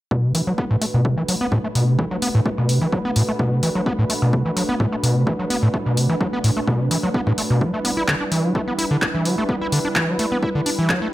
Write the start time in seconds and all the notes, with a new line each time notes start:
0.11 B2 A3 D4 F#4 B4, kick
0.24 C3
0.35 E3, open hi-hat
0.47 F#3
0.58 B3, kick
0.71 A2
0.81 A3, open hi-hat
0.94 B2
1.05 C3, kick
1.18 E3
1.28 F#3, open hi-hat
1.41 B3
1.52 A2, kick
1.64 A3
1.75 B2, open hi-hat
1.88 C3
1.99 E3, kick
2.11 F#3
2.22 B3, open hi-hat
2.35 A2
2.46 A3, kick
2.58 B2
2.69 C3, open hi-hat
2.81 E3
2.92 F#3, kick
3.05 B3
3.16 A2, open hi-hat
3.29 A3
3.39 B2, kick
3.52 C3
3.63 E3, open hi-hat
3.75 F#3
3.86 B3, kick
3.99 A2
4.10 A3, open hi-hat
4.22 B2
4.33 C3, kick
4.46 E3
4.56 F#3, open hi-hat
4.69 B3
4.80 A2, kick
4.92 A3
5.03 B2, open hi-hat
5.16 C3
5.27 E3, kick
5.39 F#3
5.50 B3, open hi-hat
5.63 A2
5.74 A3, kick
5.86 B2
5.97 C3, open hi-hat
6.10 E3
6.21 F#3, kick
6.33 B3
6.44 A2, open hi-hat
6.57 A3
6.67 B2, kick
6.80 C3
6.91 E3, open hi-hat
7.03 F#3
7.14 B3, kick
7.27 A2, kick
7.38 A3, open hi-hat
7.50 B2
7.61 F#3 G3 E4 B4, kick
7.74 A3
7.85 B3, open hi-hat
7.97 E4
8.08 D3, kick, clap
8.21 D4
8.31 E3, open hi-hat
8.44 F#3
8.55 A3, kick
8.68 B3
8.78 E4, open hi-hat
8.91 D3
9.02 D4, kick, clap
9.14 E3
9.25 F#3, open hi-hat
9.38 A3
9.49 B3, kick
9.61 E4
9.72 D3, open hi-hat
9.85 D4
9.96 E3, kick, clap
10.08 F#3
10.19 A3, open hi-hat
10.32 B3
10.43 E4, kick
10.55 D3
10.66 D4, open hi-hat
10.79 E3
10.89 F#3, kick, clap
11.02 A3